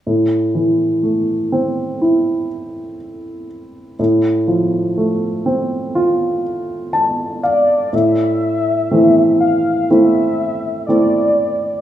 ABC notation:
X:1
M:4/4
L:1/8
Q:1/4=61
K:Am
V:1 name="Soft synth lead"
z8 | z6 z d | e3 f e2 d2 |]
V:2 name="Grand piano"
z8 | z6 a f | z8 |]
V:3 name="Grand piano"
A,, E, A, C E4 | A,, F, A, C F4 | A,,2 [E,A,C]2 [A,CE]2 [A,CE]2 |]